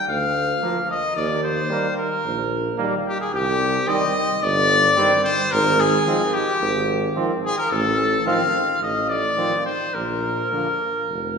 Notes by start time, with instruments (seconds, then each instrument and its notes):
0.08 tuba D2, trumpet F5
0.62 euphonium F3, french horn F3, flugelhorn A#3
0.91 trumpet D#5
1.17 tuba D#2, trumpet D5
1.43 trumpet C5
1.70 euphonium D#3, french horn G3, flugelhorn A#3
1.97 trumpet A#4
2.25 tuba A#1
2.78 euphonium D#3, french horn G3, flugelhorn A#3
3.06 trumpet G4
3.21 trumpet G#4
3.33 tuba C2, trumpet G4
3.87 euphonium D#3, french horn G3, flugelhorn C4, trumpet D#5
4.42 tuba G1, trumpet D5
4.96 euphonium D#3, french horn G3, flugelhorn C4
5.24 trumpet C5
5.52 tuba G#1, trumpet A#4
5.80 trumpet G#4
6.06 euphonium D#3, french horn F3, flugelhorn C4
6.34 trumpet G4
6.61 tuba G#1
7.15 euphonium D#3, french horn F3, flugelhorn C4
7.44 trumpet G#4
7.58 trumpet A#4
7.71 tuba A1, trumpet A4
8.26 euphonium D#3, french horn F3, flugelhorn C4, trumpet F5
8.82 tuba A1, trumpet D#5
9.10 trumpet D5
9.37 euphonium D#3, french horn F3, flugelhorn C4
9.66 trumpet C5
9.94 tuba A#1, trumpet A#4
10.52 euphonium D3, french horn F3, flugelhorn A#3
11.08 tuba F1